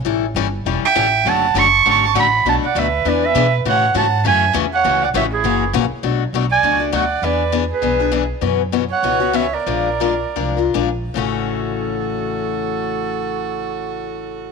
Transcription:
X:1
M:4/4
L:1/8
Q:"Swing" 1/4=200
K:A
V:1 name="Clarinet"
z4 z =g3 | a2 c'2 c' c' b2 | a f e2 d e2 z | f2 a2 g2 z f- |
f f e G3 z2 | z3 g2 z f2 | d2 z B4 z | z3 f3 e d- |
d6 z2 | A8- | A8 |]
V:2 name="Violin"
z4 z e3 | f2 a2 a a f2 | f d B2 B B2 z | c2 f2 e2 z c- |
c d c E3 z2 | z3 d2 z d2 | B2 z G4 z | z3 c3 c _B- |
_B6 z2 | F8- | F8 |]
V:3 name="Steel-string acoustic guitar"
[E,=G,CEA] z [E,G,CEA] z [E,G,CEA] z [E,G,CEA] z | [D,F,A,CF] z [D,F,A,CF] z [D,F,A,CF] z [D,F,A,CF] z | [B,,F,A,DF] z [B,,F,A,DF] z [E,B,DG] z [E,B,DG] z | [C,E,A,CF] z [C,E,A,CF] z [C,E,A,CF] z [C,E,A,CF] z |
[C,E,A,CF] z [C,E,A,CF] z [C,E,^A,CF] z [C,E,A,CF] z | [B,,F,A,DF] z [B,,F,A,DF] z [B,,F,A,DF] [A,DF] [B,,F,A,DF] z | [E,B,DG] z [E,B,DG] z [E,B,DG] [B,DG] [E,B,DG] z | [B,,E,B,CF] z [B,,E,B,CF] z [B,,E,B,CF] [B,CF] [B,,E,B,CF] z |
[=F,_A,D=F_B] z [F,A,DFB] z [F,A,DFB] [DFB] [F,A,DFB] z | [A,,C,E,A,CF]8- | [A,,C,E,A,CF]8 |]
V:4 name="Upright bass" clef=bass
A,,,2 =G,,,2 E,,, z A,,,2 | F,,,2 F,,,2 G,,,2 A,,,2 | B,,, z D,,2 E,,2 B,,2 | A,,2 G,,2 F,,2 E,,2 |
C,,2 A,,,2 F,,,2 ^A,,, z | B,,,2 B,,,2 C,,2 D,,2 | E,,4 B,,,4 | F,,4 C,,4 |
_B,,,4 =C,,2 B,,,2 | A,,,8- | A,,,8 |]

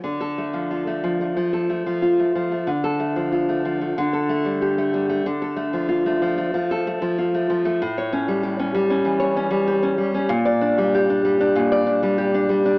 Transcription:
X:1
M:4/4
L:1/16
Q:1/4=94
K:Dm
V:1 name="Nylon-string guitar"
D, A A, F, F A, F, A, F, A A, F, F A, F, A, | D, A A, F, F A, F, A, D, A A, G, G A, G, A, | D, A A, F, F A, F, A, F, A A, F, F A, F, A, | A,, ^c ^C G, G C G, C E, c C G, G C G, C |
[K:Gm] B,, d D G, G D G, D B,, d D G, G D G, D |]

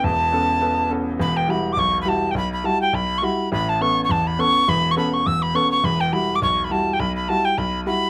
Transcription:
X:1
M:4/4
L:1/16
Q:"Swing" 1/4=207
K:Edor
V:1 name="Tin whistle"
a12 z4 | b2 g2 b3 d' c'3 b a3 g | b2 b2 a2 g2 b3 c' b4 | b2 a2 c'3 c' a2 b2 c'4 |
b3 c' b2 c'2 e'2 b2 c'2 c'2 | b2 g2 b3 d' c'3 b a3 g | b2 b2 a2 g2 b3 z b4 |]
V:2 name="Grand piano"
[E,,,E,,]4 [B,CA]4 [B,CA]4 [B,CA]4 | [E,,,E,,]4 [G,EF]4 B,,,4 [G,EF]4 | B,,,4 [G,EF]4 B,,,4 [G,EF]4 | [A,,,A,,]4 [B,CA]4 E,,4 [B,CA]4 |
[E,,,E,,]4 [B,CA]4 E,,4 [B,CA]4 | [E,,,E,,]4 [G,EF]4 B,,,4 [G,EF]4 | B,,,4 [G,EF]4 B,,,4 [G,EF]4 |]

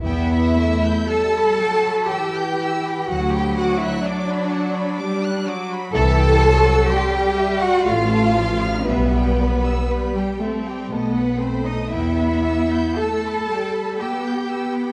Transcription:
X:1
M:3/4
L:1/16
Q:1/4=60
K:Em
V:1 name="Violin section"
g b e' g' e' b g b e' g' e' b | f b d' f' d' b f b d' f' d' b | e g c' e' c' g e g =f a c' =f' | e g b e' b g e g ^d f b ^d' |
g b e' g' e' b g b e' g' e' b |]
V:2 name="Violin section"
e4 a4 g4 | f g f e d6 z2 | a4 g3 f =f4 | B4- B G A G A B c ^d |
e4 a4 g4 |]
V:3 name="Cello section"
E4 A4 G4 | F G F E D6 z2 | A4 G3 F =F4 | B,4- B, G, A, G, A, B, C ^D |
E4 A4 G4 |]
V:4 name="Viola section" clef=bass
B,2 A,2 G,2 F,2 E,4 | F,8 G,2 F,2 | E,2 F,2 G,4 A,2 =F,2 | G,4 G,2 C2 B,2 A,2 |
B,4 A,2 G,2 B,2 B,2 |]
V:5 name="Double bass section" clef=bass
E,,4 z8 | D,,4 z8 | C,,4 z4 A,,,4 | B,,,4 z4 B,,,4 |
E,,4 z8 |]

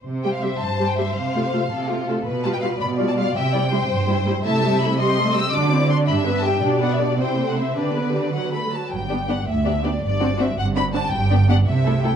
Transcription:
X:1
M:6/8
L:1/16
Q:3/8=109
K:C
V:1 name="Violin section"
z2 g f e2 a3 g e2 | f8- f2 z2 | z2 a g f2 b3 a f2 | g8- g2 z2 |
[K:G] a4 b2 c'4 e'2 | d'4 c'2 b3 a g2 | z2 f e d2 g3 f e2 | d6 f2 b2 a2 |
g4 f2 e4 d2 | d4 e2 f2 b2 a2 | g4 f2 e4 g2 |]
V:2 name="Violin section"
c12- | c6 A2 F2 A2 | B6 d6 | e2 d2 c8 |
[K:G] e6 _e6 | d6 e6 | d6 c6 | B8- B z3 |
z2 [Gd]2 [Gd]2 z2 [Gd]2 [Gd]2 | z2 [Fd]2 [Fd]2 z2 [Fd]2 [Fd]2 | z2 [Gd]2 [Gd]2 z2 A2 A2 |]
V:3 name="Viola section"
z2 [G,G]2 [G,G]2 z2 [G,G]2 [G,G]2 | z2 [A,F]2 [A,F]2 z2 [A,F]2 [A,F]2 | z2 [G,F]2 [G,F]2 z2 [G,F]2 [G,F]2 | z2 [G,E]2 [G,E]2 z2 [G,E]2 [G,E]2 |
[K:G] [A,E]2 [G,G]2 [A,E]2 [G,G]2 [A,A]2 [G,G]2 | [DF]2 [CE]2 [DF]2 [DG]2 [B,B]2 [DG]2 | [DG]2 [B,B]2 [DG]2 [CE]2 [A,C]2 [CE]2 | [DG]2 [B,B]2 [DG]2 [F,F]2 [A,A]2 [F,F]2 |
z2 [B,D]2 [B,D]2 z2 [B,D]2 [B,D]2 | z2 [CD]2 [CD]2 z2 [CD]2 [CD]2 | z2 [B,D]2 [B,D]2 z2 [A,E]2 [A,E]2 |]
V:4 name="Cello section" clef=bass
C,6 G,,6 | C,6 C,6 | B,,6 B,,6 | C,6 G,,6 |
[K:G] C,12 | D,6 G,,6 | B,,6 C,6 | D,8- D,2 z2 |
G,,6 D,,6 | G,,6 G,,6 | G,,6 C,6 |]
V:5 name="Double bass section" clef=bass
z12 | z12 | z12 | z12 |
[K:G] z12 | z12 | z12 | z12 |
G,,,6 D,,6 | G,,,6 G,,,6 | G,,,6 C,,6 |]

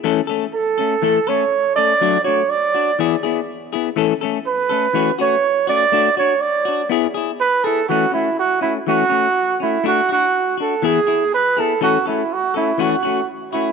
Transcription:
X:1
M:4/4
L:1/8
Q:"Swing 16ths" 1/4=122
K:A
V:1 name="Trumpet"
z2 A3 c2 d- | d c d2 z4 | z2 B3 c2 d- | d c d2 z2 B A |
F E F E F3 E | F F2 A G2 B A | F E F E F2 z E |]
V:2 name="Clean electric guitar"
[E,A,CA] [A,CA] z [A,CA] [E,A,A] [A,CA] z [A,CA] | [F,A,DF] [A,DF] z [DF] [E,B,EG] [B,EG] z [B,EG] | [E,A,CA] [A,CA] z [A,CA] [E,A,CF] [A,CF] z [A,CF] | [A,DF] [DF] z [DF] [B,EG] [EG] z [EG] |
[E,A,C] [A,C] z [A,C] [E,A,C] [A,C] z [A,C] | [A,DF] [DF] z [DF] [E,B,EG] [EG] z [B,EG] | [E,A,CA] [A,CA] z [A,CA] [E,A,CF] [A,CF] z [A,CF] |]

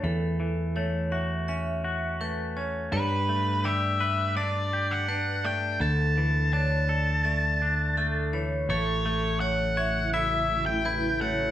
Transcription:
X:1
M:4/4
L:1/16
Q:1/4=83
K:Glyd
V:1 name="Lead electric guitar"
z16 | B4 e4 d3 f3 g2 | a4 a8- a2 z2 | c4 f4 e3 g3 f2 |]
V:2 name="Vibraphone"
A4 c2 e2 e4 B2 c2 | B4 d2 e2 d4 B2 d2 | A4 c2 d2 d4 A2 c2 | A4 c2 e2 e4 B2 c2 |]
V:3 name="Clean electric guitar"
E,2 E,2 A,2 F2 C2 F2 A,2 C2 | G,2 A,2 G2 B2 D2 G2 D2 A,2 | D,2 E,2 D2 A2 A,2 D2 A,2 E,2 | A,2 A,4 c2 E4 E2 A,2 |]
V:4 name="Ambient pad" clef=bass
z16 | z16 | z16 | [C,F,A,E]16 |]
V:5 name="Picked electric bass" clef=bass
E,,16 | G,,16 | D,,16 | A,,,16 |]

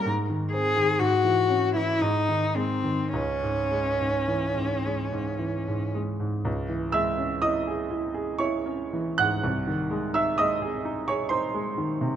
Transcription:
X:1
M:3/4
L:1/16
Q:1/4=61
K:C#m
V:1 name="Cello"
z2 G2 F3 E D2 ^B,2 | C8- C2 z2 | z12 | z12 |]
V:2 name="Grand piano"
z12 | z12 | z2 [ee']2 [dd']4 [cc']3 [ff']- | [ff']3 [ee'] [dd']3 [cc'] [^B^b]4 |]
V:3 name="Grand piano" clef=bass
G,, D, ^B, D, G,, E, C E, G,, D, G, D, | C,, G,, G, G,, E, G,, G, G,, E, G,, G, G,, | C,, E, G, C E G E G E C E, G,, | ^B,,, D, G, D G, G D G D G, D, ^B,, |]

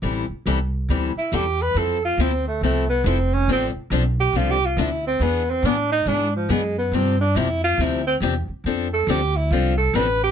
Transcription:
X:1
M:4/4
L:1/8
Q:"Swing" 1/4=139
K:Am
V:1 name="Tenor saxophone"
z4 z E G B | A F C A, A, B, C ^C | C z2 G (3F G F E C | B, C D ^D =D F, ^G, B, |
C D E F E C z2 | z A G E F A B G |]
V:2 name="Steel-string acoustic guitar"
[E,G,CEA] z [E,G,CEA] z [E,G,CEA] z [E,G,CEA] z | [F,CEA] z [F,CEA] z [F,CEA] z [F,CEA] z | [D,F,CDA] z [D,F,CDA] z [D,F,CDA] z [D,F,CDA] z | [E,B,D^G] z [E,B,DG] z [E,B,DG] z [E,B,DG] z |
[C,F,CDG] z [C,F,CDG] z [C,F,CDG] z [C,F,CDG] z | [F,CDA] z [F,CDA] z [F,CDA] z [F,CDA] z |]
V:3 name="Upright bass" clef=bass
A,,, z C,,2 D,, z E,,2 | F,,2 D,,2 C,,2 F,,,2 | A,,, z B,,,2 C,,2 D,,2 | E,,2 A,,2 ^G,,2 ^F,,2 |
G,,2 F,,2 D,,2 E,, z | F,,2 D,,2 C,,2 A,,,2 |]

